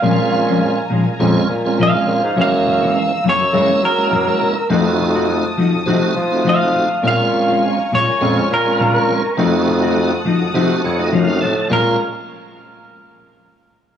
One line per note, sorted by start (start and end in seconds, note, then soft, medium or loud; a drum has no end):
0.00 0.81 A#2 medium
0.00 0.18 A#2 medium
0.00 0.19 F3 medium
0.00 0.78 G#3 medium
0.00 0.78 C4 medium
0.00 0.79 C#4 medium
0.00 1.47 F5 medium
0.00 2.33 G#5 medium
0.00 4.67 A#5 medium
0.04 0.18 G#3 medium
0.04 0.17 C#4 medium
0.04 0.79 F4 medium
0.19 muted clean electric guitar stroke soft
0.32 muted clean electric guitar stroke soft
0.47 0.60 F3 soft
0.47 0.61 G#3 soft
0.47 0.61 C#4 medium
0.61 muted clean electric guitar stroke soft
0.90 1.06 A#2 medium
0.90 1.06 F3 medium
0.90 1.06 G#3 medium
0.90 1.05 C#4 medium
1.05 1.12 A#2 soft
1.05 muted clean electric guitar stroke medium
1.19 1.42 F2 loud
1.19 1.36 A#2 medium
1.19 1.36 F3 medium
1.19 1.48 G#3 medium
1.19 1.36 G#3 medium
1.19 1.48 C4 medium
1.19 1.48 C#4 medium
1.19 1.35 C#4 medium
1.19 1.48 F4 loud
1.36 muted clean electric guitar stroke medium
1.49 1.93 A#2 medium
1.49 muted clean electric guitar stroke soft
1.65 1.83 G#3 medium
1.65 1.83 C4 medium
1.65 1.83 C#4 medium
1.65 1.83 F4 medium
1.78 1.94 A#2 medium
1.78 1.94 F3 medium
1.78 1.93 G#3 medium
1.78 1.93 C#4 medium
1.83 2.37 F5 medium
1.93 2.21 G#3 medium
1.93 2.22 C4 medium
1.93 2.22 C#4 medium
1.93 2.22 F4 medium
1.93 muted clean electric guitar stroke soft
2.07 2.22 A#2 medium
2.07 muted clean electric guitar stroke soft
2.24 2.36 G#2 medium
2.36 2.52 F#2 medium
2.36 2.95 F#2 medium
2.36 2.52 E3 medium
2.36 3.13 E3 medium
2.36 3.12 G#3 medium
2.36 3.12 A#3 medium
2.36 2.52 A#3 medium
2.36 3.13 C#4 medium
2.36 2.51 C#4 medium
2.36 4.68 E6 medium
2.41 3.24 F5 medium
2.52 muted clean electric guitar stroke soft
2.66 muted clean electric guitar stroke soft
2.82 2.95 E3 soft
2.82 2.96 A#3 soft
2.82 2.95 C#4 soft
2.96 muted clean electric guitar stroke soft
3.24 3.40 F#2 medium
3.24 3.40 E3 medium
3.24 3.40 A#3 medium
3.24 3.39 C#4 medium
3.29 3.84 C#5 medium
3.40 3.47 F#2 soft
3.40 muted clean electric guitar stroke soft
3.53 3.69 F#2 medium
3.53 3.76 C#3 loud
3.53 3.69 E3 medium
3.53 3.81 G#3 medium
3.53 3.82 A#3 medium
3.53 3.70 A#3 medium
3.53 3.82 C#4 medium
3.53 3.69 C#4 medium
3.53 3.82 E4 medium
3.70 muted clean electric guitar stroke soft
3.82 4.49 F#3 medium
3.82 4.69 A#4 medium
3.82 muted clean electric guitar stroke soft
3.98 4.16 G#3 medium
3.98 4.16 A#3 medium
3.98 4.16 C#4 medium
3.98 4.16 E4 medium
4.11 4.27 F#2 medium
4.11 4.28 E3 medium
4.11 4.28 A#3 medium
4.11 4.27 C#4 medium
4.27 4.55 G#3 medium
4.27 4.55 A#3 medium
4.27 4.55 C#4 medium
4.27 4.56 E4 medium
4.27 muted clean electric guitar stroke soft
4.41 muted clean electric guitar stroke soft
4.70 5.49 F2 medium
4.70 4.86 F3 medium
4.70 5.45 A3 loud
4.70 4.86 A3 medium
4.70 5.45 C4 medium
4.70 5.45 D#4 medium
4.70 4.87 D#4 medium
4.70 5.46 F#4 loud
4.70 4.86 F#4 medium
4.70 7.02 A5 medium
4.70 7.02 D#6 medium
4.87 muted clean electric guitar stroke soft
4.99 muted clean electric guitar stroke soft
5.15 5.29 A3 soft
5.15 5.29 D#4 medium
5.15 5.29 F#4 medium
5.29 muted clean electric guitar stroke soft
5.58 5.73 F3 medium
5.58 5.74 A3 medium
5.58 5.73 D#4 medium
5.58 5.72 F#4 medium
5.74 5.81 F2 soft
5.74 muted clean electric guitar stroke medium
5.86 6.09 C3 loud
5.86 6.03 F3 medium
5.86 6.14 A3 loud
5.86 6.02 A3 medium
5.86 6.14 C4 medium
5.86 6.15 D#4 medium
5.86 6.02 D#4 medium
5.86 6.15 F#4 loud
5.86 6.01 F#4 medium
6.02 muted clean electric guitar stroke medium
6.15 6.83 F3 medium
6.15 muted clean electric guitar stroke soft
6.32 6.50 A3 medium
6.32 6.50 C4 medium
6.32 6.50 D#4 medium
6.32 6.50 F#4 medium
6.44 6.61 F3 medium
6.44 6.61 A3 medium
6.44 6.61 D#4 medium
6.44 6.60 F#4 medium
6.49 7.04 F5 medium
6.61 6.88 A3 medium
6.61 6.89 C4 medium
6.61 6.89 D#4 medium
6.61 6.89 F#4 medium
6.61 muted clean electric guitar stroke soft
6.75 muted clean electric guitar stroke soft
7.03 7.19 A#2 medium
7.03 7.61 A#2 medium
7.03 7.19 G#3 medium
7.03 7.79 G#3 medium
7.03 7.79 C4 medium
7.03 7.19 C#4 medium
7.03 7.79 C#4 medium
7.03 7.18 F4 medium
7.03 7.80 F4 medium
7.03 9.35 G#5 medium
7.03 9.35 A#5 medium
7.03 9.35 C#6 medium
7.08 7.91 F5 medium
7.19 muted clean electric guitar stroke soft
7.33 muted clean electric guitar stroke soft
7.48 7.62 G#3 soft
7.48 7.62 C#4 soft
7.48 7.62 F4 medium
7.63 muted clean electric guitar stroke soft
7.92 8.07 A#2 medium
7.92 8.08 G#3 medium
7.92 8.08 C#4 medium
7.92 8.06 F4 medium
7.92 8.50 C#5 medium
8.07 8.14 A#2 soft
8.07 muted clean electric guitar stroke soft
8.21 8.43 F2 loud
8.21 8.36 A#2 medium
8.21 8.48 G#3 medium
8.21 8.37 G#3 medium
8.21 8.49 C4 medium
8.21 8.49 C#4 medium
8.21 8.37 C#4 medium
8.21 8.49 F4 medium
8.21 8.37 F4 medium
8.38 muted clean electric guitar stroke soft
8.50 9.17 A#2 medium
8.50 9.36 A#4 medium
8.50 muted clean electric guitar stroke soft
8.65 8.83 G#3 medium
8.65 8.83 C4 medium
8.65 8.83 C#4 medium
8.65 8.84 F4 medium
8.80 8.95 A#2 medium
8.80 8.95 G#3 medium
8.80 8.95 C#4 medium
8.80 8.94 F4 medium
8.95 9.22 G#3 medium
8.95 9.22 C4 medium
8.95 9.23 C#4 medium
8.95 9.23 F4 medium
8.95 muted clean electric guitar stroke soft
9.09 muted clean electric guitar stroke soft
9.37 10.16 F2 medium
9.37 9.53 F3 medium
9.37 10.12 A3 medium
9.37 9.53 A3 medium
9.37 10.12 C4 medium
9.37 10.12 D#4 medium
9.37 9.53 D#4 medium
9.37 10.13 F#4 loud
9.37 9.52 F#4 medium
9.37 11.68 F#5 medium
9.37 11.68 A5 medium
9.37 11.68 D#6 medium
9.53 muted clean electric guitar stroke soft
9.67 muted clean electric guitar stroke soft
9.83 9.96 A3 soft
9.83 9.96 D#4 soft
9.83 9.96 F#4 medium
9.96 muted clean electric guitar stroke soft
10.25 10.40 F3 medium
10.25 10.41 A3 medium
10.25 10.40 D#4 medium
10.25 10.39 F#4 medium
10.41 10.47 F2 soft
10.41 muted clean electric guitar stroke soft
10.54 10.76 C3 loud
10.54 10.69 F3 medium
10.54 10.82 A3 medium
10.54 10.70 A3 medium
10.54 10.82 C4 medium
10.54 10.82 D#4 medium
10.54 10.70 D#4 medium
10.54 10.82 F#4 loud
10.54 10.69 F#4 medium
10.70 muted clean electric guitar stroke medium
10.83 11.09 F2 medium
10.83 10.98 C#5 medium
10.83 muted clean electric guitar stroke soft
10.99 11.16 A3 medium
10.99 11.16 C4 medium
10.99 11.17 D#4 medium
10.99 11.17 F#4 loud
10.99 11.11 D#5 medium
11.12 11.38 F#2 medium
11.12 11.28 F3 medium
11.12 11.28 A3 medium
11.12 11.29 D#4 medium
11.12 11.28 F#4 medium
11.12 11.40 F5 medium
11.27 11.55 A3 medium
11.27 11.55 C4 medium
11.27 11.55 D#4 medium
11.27 11.56 F#4 loud
11.27 muted clean electric guitar stroke soft
11.41 11.67 A2 medium
11.41 11.68 A5 medium
11.41 muted clean electric guitar stroke soft
11.70 11.97 A#2 medium
11.70 11.94 A#2 medium
11.70 11.97 G#3 medium
11.70 11.94 G#3 medium
11.70 11.97 C4 medium
11.70 11.97 C#4 medium
11.70 11.95 C#4 medium
11.70 11.97 F4 medium
11.70 11.95 F4 medium
11.70 11.97 G#4 medium
11.70 11.97 A#4 medium
11.70 11.99 A#4 medium
11.70 11.98 C#5 medium